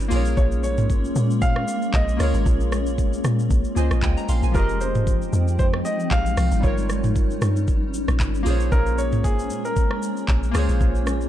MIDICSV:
0, 0, Header, 1, 6, 480
1, 0, Start_track
1, 0, Tempo, 521739
1, 343, Time_signature, 4, 2, 24, 8
1, 10384, End_track
2, 0, Start_track
2, 0, Title_t, "Grand piano"
2, 0, Program_c, 0, 0
2, 340, Note_on_c, 0, 73, 94
2, 394, Note_off_c, 0, 73, 0
2, 582, Note_on_c, 0, 73, 92
2, 1303, Note_on_c, 0, 77, 115
2, 1325, Note_off_c, 0, 73, 0
2, 1785, Note_on_c, 0, 75, 98
2, 1798, Note_off_c, 0, 77, 0
2, 2024, Note_on_c, 0, 73, 83
2, 2031, Note_off_c, 0, 75, 0
2, 2947, Note_off_c, 0, 73, 0
2, 4184, Note_on_c, 0, 70, 95
2, 4422, Note_on_c, 0, 72, 93
2, 4431, Note_off_c, 0, 70, 0
2, 5129, Note_off_c, 0, 72, 0
2, 5142, Note_on_c, 0, 72, 105
2, 5197, Note_off_c, 0, 72, 0
2, 5381, Note_on_c, 0, 75, 99
2, 5606, Note_off_c, 0, 75, 0
2, 5620, Note_on_c, 0, 77, 109
2, 6101, Note_on_c, 0, 73, 91
2, 6116, Note_off_c, 0, 77, 0
2, 7746, Note_off_c, 0, 73, 0
2, 8022, Note_on_c, 0, 70, 105
2, 8263, Note_on_c, 0, 73, 106
2, 8270, Note_off_c, 0, 70, 0
2, 8502, Note_on_c, 0, 68, 97
2, 8511, Note_off_c, 0, 73, 0
2, 8878, Note_on_c, 0, 70, 90
2, 8886, Note_off_c, 0, 68, 0
2, 10384, Note_off_c, 0, 70, 0
2, 10384, End_track
3, 0, Start_track
3, 0, Title_t, "Synth keys"
3, 0, Program_c, 1, 88
3, 0, Control_c, 1, 64, 127
3, 0, Note_on_c, 1, 55, 72
3, 0, Note_on_c, 1, 63, 64
3, 0, Note_on_c, 1, 65, 64
3, 0, Note_on_c, 1, 70, 66
3, 0, Note_on_c, 1, 73, 76
3, 77, Note_on_c, 1, 58, 80
3, 93, Note_off_c, 1, 65, 0
3, 93, Note_on_c, 1, 65, 75
3, 110, Note_on_c, 1, 68, 77
3, 115, Control_c, 1, 64, 0
3, 117, Note_off_c, 1, 73, 0
3, 118, Note_off_c, 1, 70, 0
3, 119, Note_off_c, 1, 63, 0
3, 120, Note_off_c, 1, 55, 0
3, 127, Note_on_c, 1, 70, 74
3, 144, Note_on_c, 1, 73, 91
3, 280, Control_c, 1, 64, 127
3, 1973, Note_off_c, 1, 58, 0
3, 1981, Note_off_c, 1, 65, 0
3, 1990, Note_off_c, 1, 68, 0
3, 1995, Note_on_c, 1, 58, 69
3, 1998, Note_off_c, 1, 70, 0
3, 2007, Note_off_c, 1, 73, 0
3, 2011, Note_on_c, 1, 65, 64
3, 2029, Note_on_c, 1, 68, 64
3, 2046, Note_on_c, 1, 70, 64
3, 2063, Note_on_c, 1, 73, 78
3, 3420, Note_off_c, 1, 58, 0
3, 3429, Note_off_c, 1, 65, 0
3, 3438, Note_off_c, 1, 68, 0
3, 3446, Note_off_c, 1, 70, 0
3, 3451, Note_on_c, 1, 58, 62
3, 3455, Note_off_c, 1, 73, 0
3, 3460, Note_on_c, 1, 65, 58
3, 3468, Note_on_c, 1, 68, 57
3, 3469, Note_on_c, 1, 80, 71
3, 3477, Note_on_c, 1, 72, 59
3, 3486, Note_on_c, 1, 75, 68
3, 3689, Note_off_c, 1, 80, 0
3, 3707, Note_on_c, 1, 79, 72
3, 3707, Note_on_c, 1, 80, 64
3, 3831, Note_off_c, 1, 80, 0
3, 3838, Note_on_c, 1, 82, 72
3, 3929, Note_off_c, 1, 79, 0
3, 3939, Note_off_c, 1, 82, 0
3, 3947, Note_on_c, 1, 77, 77
3, 3947, Note_on_c, 1, 84, 73
3, 4071, Note_off_c, 1, 84, 0
3, 4081, Note_on_c, 1, 80, 68
3, 4156, Note_on_c, 1, 53, 71
3, 4162, Note_off_c, 1, 65, 0
3, 4169, Note_off_c, 1, 77, 0
3, 4173, Note_on_c, 1, 65, 64
3, 4177, Note_off_c, 1, 58, 0
3, 4186, Note_off_c, 1, 68, 0
3, 4190, Note_off_c, 1, 72, 0
3, 4190, Note_on_c, 1, 67, 64
3, 4195, Note_off_c, 1, 75, 0
3, 4197, Control_c, 1, 64, 0
3, 4206, Note_on_c, 1, 68, 63
3, 4224, Note_on_c, 1, 75, 77
3, 4306, Note_off_c, 1, 80, 0
3, 4383, Control_c, 1, 64, 127
3, 6053, Note_off_c, 1, 53, 0
3, 6062, Note_off_c, 1, 65, 0
3, 6070, Note_off_c, 1, 67, 0
3, 6074, Note_on_c, 1, 55, 66
3, 6078, Note_off_c, 1, 68, 0
3, 6087, Note_off_c, 1, 75, 0
3, 6091, Note_on_c, 1, 63, 64
3, 6109, Note_on_c, 1, 65, 62
3, 6113, Control_c, 1, 64, 0
3, 6125, Note_on_c, 1, 70, 64
3, 6142, Note_on_c, 1, 73, 76
3, 6273, Control_c, 1, 64, 127
3, 7735, Note_off_c, 1, 55, 0
3, 7744, Note_off_c, 1, 63, 0
3, 7753, Note_off_c, 1, 65, 0
3, 7754, Note_on_c, 1, 58, 84
3, 7761, Note_off_c, 1, 70, 0
3, 7770, Note_off_c, 1, 73, 0
3, 7770, Note_on_c, 1, 65, 73
3, 7789, Note_on_c, 1, 68, 77
3, 7796, Control_c, 1, 64, 0
3, 7805, Note_on_c, 1, 72, 73
3, 7823, Note_on_c, 1, 73, 88
3, 7981, Control_c, 1, 64, 127
3, 9652, Note_off_c, 1, 58, 0
3, 9660, Note_off_c, 1, 65, 0
3, 9669, Note_off_c, 1, 68, 0
3, 9673, Note_on_c, 1, 58, 82
3, 9678, Note_off_c, 1, 72, 0
3, 9686, Note_off_c, 1, 73, 0
3, 9690, Note_on_c, 1, 65, 73
3, 9707, Note_on_c, 1, 68, 74
3, 9725, Note_on_c, 1, 72, 77
3, 9742, Note_on_c, 1, 73, 87
3, 10384, Note_off_c, 1, 58, 0
3, 10384, Note_off_c, 1, 65, 0
3, 10384, Note_off_c, 1, 68, 0
3, 10384, Note_off_c, 1, 72, 0
3, 10384, Note_off_c, 1, 73, 0
3, 10384, End_track
4, 0, Start_track
4, 0, Title_t, "Ambient pad"
4, 0, Program_c, 2, 92
4, 0, Note_on_c, 2, 61, 76
4, 103, Note_on_c, 2, 58, 79
4, 105, Note_on_c, 2, 56, 85
4, 4146, Note_off_c, 2, 58, 0
4, 4147, Note_off_c, 2, 56, 0
4, 4147, Note_off_c, 2, 61, 0
4, 4185, Note_on_c, 2, 56, 94
4, 4186, Note_on_c, 2, 53, 87
4, 4186, Note_on_c, 2, 60, 78
4, 4186, Note_on_c, 2, 63, 75
4, 4186, Note_on_c, 2, 79, 79
4, 6085, Note_off_c, 2, 56, 0
4, 6085, Note_off_c, 2, 79, 0
4, 6086, Note_off_c, 2, 53, 0
4, 6086, Note_off_c, 2, 60, 0
4, 6103, Note_on_c, 2, 55, 83
4, 6104, Note_on_c, 2, 61, 78
4, 7749, Note_off_c, 2, 63, 0
4, 7767, Note_off_c, 2, 55, 0
4, 7767, Note_off_c, 2, 61, 0
4, 7785, Note_on_c, 2, 56, 84
4, 7785, Note_on_c, 2, 61, 98
4, 7786, Note_on_c, 2, 58, 80
4, 10384, Note_off_c, 2, 56, 0
4, 10384, Note_off_c, 2, 58, 0
4, 10384, Note_off_c, 2, 61, 0
4, 10384, End_track
5, 0, Start_track
5, 0, Title_t, "Log drum bass"
5, 0, Program_c, 3, 39
5, 106, Note_on_c, 3, 34, 105
5, 332, Note_off_c, 3, 34, 0
5, 345, Note_on_c, 3, 34, 114
5, 1028, Note_off_c, 3, 34, 0
5, 1065, Note_on_c, 3, 46, 104
5, 1520, Note_off_c, 3, 46, 0
5, 1783, Note_on_c, 3, 34, 102
5, 2011, Note_off_c, 3, 34, 0
5, 2024, Note_on_c, 3, 37, 91
5, 2149, Note_off_c, 3, 37, 0
5, 2156, Note_on_c, 3, 32, 95
5, 2258, Note_off_c, 3, 32, 0
5, 2264, Note_on_c, 3, 34, 118
5, 2948, Note_off_c, 3, 34, 0
5, 2985, Note_on_c, 3, 46, 109
5, 3212, Note_off_c, 3, 46, 0
5, 3226, Note_on_c, 3, 34, 99
5, 3350, Note_off_c, 3, 34, 0
5, 3462, Note_on_c, 3, 37, 95
5, 3588, Note_off_c, 3, 37, 0
5, 3597, Note_on_c, 3, 34, 95
5, 3699, Note_off_c, 3, 34, 0
5, 3703, Note_on_c, 3, 37, 97
5, 3828, Note_off_c, 3, 37, 0
5, 3945, Note_on_c, 3, 34, 96
5, 4070, Note_off_c, 3, 34, 0
5, 4075, Note_on_c, 3, 34, 88
5, 4178, Note_off_c, 3, 34, 0
5, 4183, Note_on_c, 3, 29, 119
5, 4867, Note_off_c, 3, 29, 0
5, 4903, Note_on_c, 3, 41, 106
5, 5359, Note_off_c, 3, 41, 0
5, 5622, Note_on_c, 3, 34, 94
5, 5851, Note_off_c, 3, 34, 0
5, 5863, Note_on_c, 3, 36, 96
5, 5988, Note_off_c, 3, 36, 0
5, 5994, Note_on_c, 3, 32, 90
5, 6098, Note_off_c, 3, 32, 0
5, 6104, Note_on_c, 3, 31, 117
5, 6788, Note_off_c, 3, 31, 0
5, 6823, Note_on_c, 3, 43, 98
5, 7066, Note_on_c, 3, 31, 102
5, 7079, Note_off_c, 3, 43, 0
5, 7418, Note_off_c, 3, 31, 0
5, 7436, Note_on_c, 3, 34, 94
5, 7538, Note_off_c, 3, 34, 0
5, 7542, Note_on_c, 3, 31, 101
5, 7771, Note_off_c, 3, 31, 0
5, 7784, Note_on_c, 3, 34, 104
5, 8012, Note_off_c, 3, 34, 0
5, 8024, Note_on_c, 3, 34, 122
5, 8744, Note_on_c, 3, 46, 106
5, 8758, Note_off_c, 3, 34, 0
5, 9200, Note_off_c, 3, 46, 0
5, 9462, Note_on_c, 3, 34, 98
5, 9691, Note_off_c, 3, 34, 0
5, 9704, Note_on_c, 3, 37, 96
5, 9829, Note_off_c, 3, 37, 0
5, 9835, Note_on_c, 3, 34, 93
5, 9938, Note_off_c, 3, 34, 0
5, 9943, Note_on_c, 3, 34, 112
5, 10384, Note_off_c, 3, 34, 0
5, 10384, End_track
6, 0, Start_track
6, 0, Title_t, "Drums"
6, 0, Note_on_c, 9, 82, 52
6, 90, Note_off_c, 9, 82, 0
6, 102, Note_on_c, 9, 46, 79
6, 102, Note_on_c, 9, 82, 88
6, 194, Note_off_c, 9, 46, 0
6, 194, Note_off_c, 9, 82, 0
6, 233, Note_on_c, 9, 82, 63
6, 325, Note_off_c, 9, 82, 0
6, 343, Note_on_c, 9, 82, 67
6, 344, Note_on_c, 9, 36, 119
6, 435, Note_off_c, 9, 82, 0
6, 436, Note_off_c, 9, 36, 0
6, 475, Note_on_c, 9, 82, 52
6, 567, Note_off_c, 9, 82, 0
6, 585, Note_on_c, 9, 82, 93
6, 677, Note_off_c, 9, 82, 0
6, 715, Note_on_c, 9, 82, 46
6, 719, Note_on_c, 9, 45, 99
6, 807, Note_off_c, 9, 82, 0
6, 811, Note_off_c, 9, 45, 0
6, 825, Note_on_c, 9, 36, 99
6, 826, Note_on_c, 9, 82, 79
6, 917, Note_off_c, 9, 36, 0
6, 918, Note_off_c, 9, 82, 0
6, 961, Note_on_c, 9, 82, 53
6, 1053, Note_off_c, 9, 82, 0
6, 1064, Note_on_c, 9, 82, 89
6, 1156, Note_off_c, 9, 82, 0
6, 1200, Note_on_c, 9, 82, 61
6, 1292, Note_off_c, 9, 82, 0
6, 1304, Note_on_c, 9, 82, 72
6, 1306, Note_on_c, 9, 36, 119
6, 1396, Note_off_c, 9, 82, 0
6, 1398, Note_off_c, 9, 36, 0
6, 1436, Note_on_c, 9, 37, 94
6, 1528, Note_off_c, 9, 37, 0
6, 1545, Note_on_c, 9, 82, 106
6, 1637, Note_off_c, 9, 82, 0
6, 1676, Note_on_c, 9, 82, 50
6, 1768, Note_off_c, 9, 82, 0
6, 1782, Note_on_c, 9, 39, 98
6, 1782, Note_on_c, 9, 82, 77
6, 1783, Note_on_c, 9, 36, 105
6, 1874, Note_off_c, 9, 39, 0
6, 1874, Note_off_c, 9, 82, 0
6, 1875, Note_off_c, 9, 36, 0
6, 1919, Note_on_c, 9, 82, 55
6, 2011, Note_off_c, 9, 82, 0
6, 2024, Note_on_c, 9, 37, 92
6, 2024, Note_on_c, 9, 46, 79
6, 2024, Note_on_c, 9, 82, 89
6, 2116, Note_off_c, 9, 37, 0
6, 2116, Note_off_c, 9, 46, 0
6, 2116, Note_off_c, 9, 82, 0
6, 2155, Note_on_c, 9, 82, 65
6, 2247, Note_off_c, 9, 82, 0
6, 2264, Note_on_c, 9, 36, 113
6, 2264, Note_on_c, 9, 82, 69
6, 2356, Note_off_c, 9, 36, 0
6, 2356, Note_off_c, 9, 82, 0
6, 2395, Note_on_c, 9, 82, 52
6, 2487, Note_off_c, 9, 82, 0
6, 2505, Note_on_c, 9, 37, 99
6, 2505, Note_on_c, 9, 82, 93
6, 2597, Note_off_c, 9, 37, 0
6, 2597, Note_off_c, 9, 82, 0
6, 2635, Note_on_c, 9, 82, 48
6, 2727, Note_off_c, 9, 82, 0
6, 2745, Note_on_c, 9, 36, 95
6, 2745, Note_on_c, 9, 82, 80
6, 2837, Note_off_c, 9, 36, 0
6, 2837, Note_off_c, 9, 82, 0
6, 2881, Note_on_c, 9, 82, 52
6, 2973, Note_off_c, 9, 82, 0
6, 2983, Note_on_c, 9, 82, 86
6, 2986, Note_on_c, 9, 37, 93
6, 3075, Note_off_c, 9, 82, 0
6, 3078, Note_off_c, 9, 37, 0
6, 3121, Note_on_c, 9, 82, 59
6, 3213, Note_off_c, 9, 82, 0
6, 3225, Note_on_c, 9, 82, 74
6, 3226, Note_on_c, 9, 36, 120
6, 3317, Note_off_c, 9, 82, 0
6, 3318, Note_off_c, 9, 36, 0
6, 3352, Note_on_c, 9, 82, 52
6, 3444, Note_off_c, 9, 82, 0
6, 3465, Note_on_c, 9, 82, 101
6, 3557, Note_off_c, 9, 82, 0
6, 3597, Note_on_c, 9, 82, 48
6, 3598, Note_on_c, 9, 37, 100
6, 3689, Note_off_c, 9, 82, 0
6, 3690, Note_off_c, 9, 37, 0
6, 3703, Note_on_c, 9, 36, 101
6, 3703, Note_on_c, 9, 39, 101
6, 3704, Note_on_c, 9, 82, 71
6, 3795, Note_off_c, 9, 36, 0
6, 3795, Note_off_c, 9, 39, 0
6, 3796, Note_off_c, 9, 82, 0
6, 3840, Note_on_c, 9, 82, 57
6, 3932, Note_off_c, 9, 82, 0
6, 3944, Note_on_c, 9, 46, 77
6, 3944, Note_on_c, 9, 82, 91
6, 4036, Note_off_c, 9, 46, 0
6, 4036, Note_off_c, 9, 82, 0
6, 4074, Note_on_c, 9, 82, 64
6, 4166, Note_off_c, 9, 82, 0
6, 4183, Note_on_c, 9, 36, 119
6, 4183, Note_on_c, 9, 82, 65
6, 4275, Note_off_c, 9, 36, 0
6, 4275, Note_off_c, 9, 82, 0
6, 4315, Note_on_c, 9, 82, 51
6, 4407, Note_off_c, 9, 82, 0
6, 4425, Note_on_c, 9, 82, 95
6, 4517, Note_off_c, 9, 82, 0
6, 4554, Note_on_c, 9, 82, 48
6, 4557, Note_on_c, 9, 45, 101
6, 4646, Note_off_c, 9, 82, 0
6, 4649, Note_off_c, 9, 45, 0
6, 4664, Note_on_c, 9, 36, 102
6, 4666, Note_on_c, 9, 82, 82
6, 4756, Note_off_c, 9, 36, 0
6, 4758, Note_off_c, 9, 82, 0
6, 4801, Note_on_c, 9, 82, 53
6, 4893, Note_off_c, 9, 82, 0
6, 4904, Note_on_c, 9, 82, 89
6, 4996, Note_off_c, 9, 82, 0
6, 5040, Note_on_c, 9, 82, 61
6, 5132, Note_off_c, 9, 82, 0
6, 5144, Note_on_c, 9, 82, 75
6, 5145, Note_on_c, 9, 36, 120
6, 5236, Note_off_c, 9, 82, 0
6, 5237, Note_off_c, 9, 36, 0
6, 5277, Note_on_c, 9, 37, 97
6, 5369, Note_off_c, 9, 37, 0
6, 5386, Note_on_c, 9, 82, 102
6, 5478, Note_off_c, 9, 82, 0
6, 5518, Note_on_c, 9, 82, 52
6, 5610, Note_off_c, 9, 82, 0
6, 5622, Note_on_c, 9, 39, 103
6, 5623, Note_on_c, 9, 36, 106
6, 5623, Note_on_c, 9, 82, 76
6, 5714, Note_off_c, 9, 39, 0
6, 5715, Note_off_c, 9, 36, 0
6, 5715, Note_off_c, 9, 82, 0
6, 5759, Note_on_c, 9, 82, 56
6, 5851, Note_off_c, 9, 82, 0
6, 5864, Note_on_c, 9, 37, 96
6, 5864, Note_on_c, 9, 46, 77
6, 5864, Note_on_c, 9, 82, 96
6, 5956, Note_off_c, 9, 37, 0
6, 5956, Note_off_c, 9, 46, 0
6, 5956, Note_off_c, 9, 82, 0
6, 5994, Note_on_c, 9, 82, 64
6, 6086, Note_off_c, 9, 82, 0
6, 6104, Note_on_c, 9, 36, 121
6, 6104, Note_on_c, 9, 82, 67
6, 6196, Note_off_c, 9, 36, 0
6, 6196, Note_off_c, 9, 82, 0
6, 6235, Note_on_c, 9, 82, 54
6, 6327, Note_off_c, 9, 82, 0
6, 6344, Note_on_c, 9, 37, 95
6, 6344, Note_on_c, 9, 82, 98
6, 6436, Note_off_c, 9, 37, 0
6, 6436, Note_off_c, 9, 82, 0
6, 6474, Note_on_c, 9, 82, 47
6, 6478, Note_on_c, 9, 45, 95
6, 6566, Note_off_c, 9, 82, 0
6, 6570, Note_off_c, 9, 45, 0
6, 6584, Note_on_c, 9, 36, 101
6, 6585, Note_on_c, 9, 82, 82
6, 6676, Note_off_c, 9, 36, 0
6, 6677, Note_off_c, 9, 82, 0
6, 6720, Note_on_c, 9, 82, 51
6, 6812, Note_off_c, 9, 82, 0
6, 6823, Note_on_c, 9, 82, 84
6, 6826, Note_on_c, 9, 37, 96
6, 6915, Note_off_c, 9, 82, 0
6, 6918, Note_off_c, 9, 37, 0
6, 6959, Note_on_c, 9, 82, 62
6, 7051, Note_off_c, 9, 82, 0
6, 7062, Note_on_c, 9, 82, 71
6, 7065, Note_on_c, 9, 36, 118
6, 7154, Note_off_c, 9, 82, 0
6, 7157, Note_off_c, 9, 36, 0
6, 7304, Note_on_c, 9, 82, 101
6, 7396, Note_off_c, 9, 82, 0
6, 7436, Note_on_c, 9, 37, 99
6, 7436, Note_on_c, 9, 82, 50
6, 7528, Note_off_c, 9, 37, 0
6, 7528, Note_off_c, 9, 82, 0
6, 7542, Note_on_c, 9, 36, 101
6, 7542, Note_on_c, 9, 39, 101
6, 7543, Note_on_c, 9, 82, 78
6, 7634, Note_off_c, 9, 36, 0
6, 7634, Note_off_c, 9, 39, 0
6, 7635, Note_off_c, 9, 82, 0
6, 7678, Note_on_c, 9, 82, 54
6, 7770, Note_off_c, 9, 82, 0
6, 7783, Note_on_c, 9, 46, 75
6, 7783, Note_on_c, 9, 82, 92
6, 7875, Note_off_c, 9, 46, 0
6, 7875, Note_off_c, 9, 82, 0
6, 7914, Note_on_c, 9, 82, 67
6, 8006, Note_off_c, 9, 82, 0
6, 8023, Note_on_c, 9, 82, 65
6, 8024, Note_on_c, 9, 36, 120
6, 8115, Note_off_c, 9, 82, 0
6, 8116, Note_off_c, 9, 36, 0
6, 8154, Note_on_c, 9, 82, 53
6, 8246, Note_off_c, 9, 82, 0
6, 8264, Note_on_c, 9, 82, 95
6, 8356, Note_off_c, 9, 82, 0
6, 8394, Note_on_c, 9, 82, 48
6, 8397, Note_on_c, 9, 45, 99
6, 8486, Note_off_c, 9, 82, 0
6, 8489, Note_off_c, 9, 45, 0
6, 8504, Note_on_c, 9, 36, 101
6, 8505, Note_on_c, 9, 82, 82
6, 8596, Note_off_c, 9, 36, 0
6, 8597, Note_off_c, 9, 82, 0
6, 8640, Note_on_c, 9, 82, 56
6, 8732, Note_off_c, 9, 82, 0
6, 8742, Note_on_c, 9, 82, 91
6, 8834, Note_off_c, 9, 82, 0
6, 8878, Note_on_c, 9, 82, 61
6, 8970, Note_off_c, 9, 82, 0
6, 8983, Note_on_c, 9, 82, 75
6, 8984, Note_on_c, 9, 36, 119
6, 9075, Note_off_c, 9, 82, 0
6, 9076, Note_off_c, 9, 36, 0
6, 9115, Note_on_c, 9, 37, 94
6, 9207, Note_off_c, 9, 37, 0
6, 9223, Note_on_c, 9, 82, 103
6, 9315, Note_off_c, 9, 82, 0
6, 9355, Note_on_c, 9, 82, 49
6, 9447, Note_off_c, 9, 82, 0
6, 9462, Note_on_c, 9, 36, 104
6, 9462, Note_on_c, 9, 39, 102
6, 9462, Note_on_c, 9, 82, 76
6, 9554, Note_off_c, 9, 36, 0
6, 9554, Note_off_c, 9, 39, 0
6, 9554, Note_off_c, 9, 82, 0
6, 9598, Note_on_c, 9, 82, 55
6, 9690, Note_off_c, 9, 82, 0
6, 9703, Note_on_c, 9, 37, 100
6, 9703, Note_on_c, 9, 46, 74
6, 9703, Note_on_c, 9, 82, 93
6, 9795, Note_off_c, 9, 37, 0
6, 9795, Note_off_c, 9, 46, 0
6, 9795, Note_off_c, 9, 82, 0
6, 9834, Note_on_c, 9, 82, 68
6, 9926, Note_off_c, 9, 82, 0
6, 9943, Note_on_c, 9, 36, 119
6, 9943, Note_on_c, 9, 82, 70
6, 10035, Note_off_c, 9, 36, 0
6, 10035, Note_off_c, 9, 82, 0
6, 10074, Note_on_c, 9, 82, 51
6, 10166, Note_off_c, 9, 82, 0
6, 10183, Note_on_c, 9, 37, 98
6, 10183, Note_on_c, 9, 82, 100
6, 10275, Note_off_c, 9, 37, 0
6, 10275, Note_off_c, 9, 82, 0
6, 10312, Note_on_c, 9, 82, 47
6, 10384, Note_off_c, 9, 82, 0
6, 10384, End_track
0, 0, End_of_file